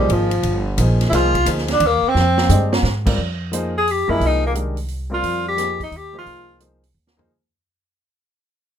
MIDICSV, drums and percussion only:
0, 0, Header, 1, 2, 480
1, 0, Start_track
1, 0, Tempo, 342661
1, 136, Time_signature, 3, 2, 24, 8
1, 12302, End_track
2, 0, Start_track
2, 0, Title_t, "Drums"
2, 135, Note_on_c, 9, 51, 54
2, 275, Note_off_c, 9, 51, 0
2, 437, Note_on_c, 9, 51, 47
2, 577, Note_off_c, 9, 51, 0
2, 607, Note_on_c, 9, 51, 54
2, 747, Note_off_c, 9, 51, 0
2, 1089, Note_on_c, 9, 44, 49
2, 1089, Note_on_c, 9, 51, 64
2, 1229, Note_off_c, 9, 44, 0
2, 1229, Note_off_c, 9, 51, 0
2, 1412, Note_on_c, 9, 51, 44
2, 1413, Note_on_c, 9, 38, 31
2, 1552, Note_off_c, 9, 51, 0
2, 1553, Note_off_c, 9, 38, 0
2, 1581, Note_on_c, 9, 51, 57
2, 1582, Note_on_c, 9, 38, 35
2, 1721, Note_off_c, 9, 51, 0
2, 1722, Note_off_c, 9, 38, 0
2, 1890, Note_on_c, 9, 36, 51
2, 1891, Note_on_c, 9, 51, 43
2, 2030, Note_off_c, 9, 36, 0
2, 2031, Note_off_c, 9, 51, 0
2, 2049, Note_on_c, 9, 44, 49
2, 2049, Note_on_c, 9, 51, 69
2, 2189, Note_off_c, 9, 44, 0
2, 2189, Note_off_c, 9, 51, 0
2, 2210, Note_on_c, 9, 38, 27
2, 2351, Note_off_c, 9, 38, 0
2, 2357, Note_on_c, 9, 51, 45
2, 2368, Note_on_c, 9, 38, 43
2, 2497, Note_off_c, 9, 51, 0
2, 2508, Note_off_c, 9, 38, 0
2, 2524, Note_on_c, 9, 51, 57
2, 2664, Note_off_c, 9, 51, 0
2, 3020, Note_on_c, 9, 38, 47
2, 3160, Note_off_c, 9, 38, 0
2, 3329, Note_on_c, 9, 38, 65
2, 3469, Note_off_c, 9, 38, 0
2, 3491, Note_on_c, 9, 44, 63
2, 3493, Note_on_c, 9, 43, 64
2, 3632, Note_off_c, 9, 44, 0
2, 3633, Note_off_c, 9, 43, 0
2, 3819, Note_on_c, 9, 38, 80
2, 3959, Note_off_c, 9, 38, 0
2, 3975, Note_on_c, 9, 38, 50
2, 4115, Note_off_c, 9, 38, 0
2, 4294, Note_on_c, 9, 36, 71
2, 4295, Note_on_c, 9, 49, 73
2, 4435, Note_off_c, 9, 36, 0
2, 4435, Note_off_c, 9, 49, 0
2, 4943, Note_on_c, 9, 42, 54
2, 5083, Note_off_c, 9, 42, 0
2, 5428, Note_on_c, 9, 46, 41
2, 5568, Note_off_c, 9, 46, 0
2, 5901, Note_on_c, 9, 46, 43
2, 6041, Note_off_c, 9, 46, 0
2, 6379, Note_on_c, 9, 42, 51
2, 6519, Note_off_c, 9, 42, 0
2, 6681, Note_on_c, 9, 46, 38
2, 6821, Note_off_c, 9, 46, 0
2, 6842, Note_on_c, 9, 46, 39
2, 6982, Note_off_c, 9, 46, 0
2, 7333, Note_on_c, 9, 46, 44
2, 7473, Note_off_c, 9, 46, 0
2, 7816, Note_on_c, 9, 42, 52
2, 7818, Note_on_c, 9, 38, 37
2, 7957, Note_off_c, 9, 42, 0
2, 7958, Note_off_c, 9, 38, 0
2, 8127, Note_on_c, 9, 36, 50
2, 8133, Note_on_c, 9, 46, 38
2, 8267, Note_off_c, 9, 36, 0
2, 8273, Note_off_c, 9, 46, 0
2, 8296, Note_on_c, 9, 46, 41
2, 8436, Note_off_c, 9, 46, 0
2, 8773, Note_on_c, 9, 46, 41
2, 8913, Note_off_c, 9, 46, 0
2, 9250, Note_on_c, 9, 42, 46
2, 9390, Note_off_c, 9, 42, 0
2, 9574, Note_on_c, 9, 46, 34
2, 9714, Note_off_c, 9, 46, 0
2, 9906, Note_on_c, 9, 38, 51
2, 10046, Note_off_c, 9, 38, 0
2, 10070, Note_on_c, 9, 43, 66
2, 10210, Note_off_c, 9, 43, 0
2, 12302, End_track
0, 0, End_of_file